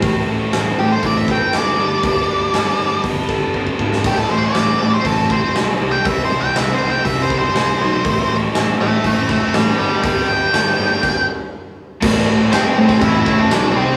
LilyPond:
<<
  \new Staff \with { instrumentName = "Lead electric guitar" } { \time 4/4 \key a \minor \tempo 4 = 120 r4. g'16 c''16 d''16 e''16 g''8 d''4~ | d''2 r2 | g'16 a'16 c''16 d''4 c''16 a'8 c''8 \tuplet 3/2 { r4 g''8 } | \tuplet 3/2 { e''8 c''8 g''8 e''8 c''8 g''8 e''8 c''8 c''8~ } c''4~ |
c''8. r8. <e'' a''>8 <e'' a''>8 <e'' a''>8 <d'' g''>8 <d'' g''>8 | <d'' g''>8 g''2 r4. | r4 <c' c''>4 <e' e''>8. <d' d''>8. <c' c''>8 | }
  \new Staff \with { instrumentName = "Steel-string acoustic guitar" } { \time 4/4 \key a \minor a,8 a8 a8 c'8 e'8 b'8 e'8 g8 | g8 d'8 g8 d'8 b8 a'8 b8 g8 | r1 | r1 |
r1 | r1 | r1 | }
  \new Staff \with { instrumentName = "Distorted electric guitar" } { \time 4/4 \key a \minor <a, e a c' e'>4 <e a c' e'>4. <a c' e'>8 <a, e a c' e'>8 <g, d g b d'>8 | <g, d g b d'>4 <d g b d'>4. <g b d'>8 <g, d g b d'>8 <g b d'>8 | <a, e a c' e'>4 <e a c' e'>4. <a c' e'>8 <a, e a c' e'>8 <c e g c' e'>8 | <c e g c' e'>4 <e g c' e'>4. <g c' e'>8 <c e g c' e'>8 <g c' e'>8 |
<a, e a c' e'>4 <e a c' e'>4. <a c' e'>8 <a, e a c' e'>8 <g, d g b d'>8 | <g, d g b d'>4 <d g b d'>4 r2 | <a, e a c' e'>8 <a c' e'>8 <e a c' e'>4. <a c' e'>8 <a, e a c' e'>8 <c e g c' e'>8 | }
  \new Staff \with { instrumentName = "Distorted electric guitar" } { \time 4/4 \key a \minor r1 | r1 | <a, e a c' e'>8 <a c' e'>8 <a, e a c' e'>8 <a c' e'>4. <e a c' e'>8 <c e g c' e'>8 | <c e g c' e'>8 <g c' e'>8 <c e g c' e'>8 <g c' e'>4. <e g c' e'>8 <g c' e'>8 |
<a, e a c' e'>8 <a c' e'>8 <a, e a c' e'>8 <a c' e'>4. <e a c' e'>8 <g, d g b d'>8 | <g, d g b d'>8 <g b d'>8 <g, d g b d'>8 <g b d'>8 r2 | <a, e a c' e'>4 <a, e a c' e'>8 <a c' e'>4. <e a c' e'>8 <c e g c' e'>8 | }
  \new Staff \with { instrumentName = "Picked electric bass" } { \clef bass \time 4/4 \key a \minor a,,8 a,,8 a,,8 a,,8 a,,4 fis,,8 g,,8 | g,,8 g,,8 g,,8 g,,8 g,,4 g,,8 gis,,8 | a,,8 a,,8 a,,8 a,,8 a,,4 b,,8 c,8 | c,8 c,8 c,8 c,8 c,4 c,8 b,,8 |
a,,8 a,,8 a,,8 a,,8 a,,4 a,,8 g,,8 | g,,8 g,,8 g,,8 g,,8 r2 | a,,8 a,,8 g,8 a,8 a,,8 a,,8 b,,8 c,8 | }
  \new DrumStaff \with { instrumentName = "Drums" } \drummode { \time 4/4 <hho bd>4 <hho sn>4 <hho bd>8 <bd sn>8 <hho sn>4 | <hho bd>4 <hho sn>4 <hho bd>8 <bd sn>8 bd16 bd16 bd16 sn16 | <cymc hho bd>4 <hho sn>4 <hho bd>8 bd8 <hho sn>4 | <hho bd>4 <hho sn>4 <hho bd>8 bd8 <hho sn>4 |
<hho bd>4 <hho sn>4 <hho bd>8 <bd sn>8 <hho sn>4 | <hho bd>4 <hho sn>4 <cymc bd>4 r4 | <cymc bd>4 <cymc sn>8. <bd sn>16 <cymc bd>8 bd8 <cymc sn>4 | }
>>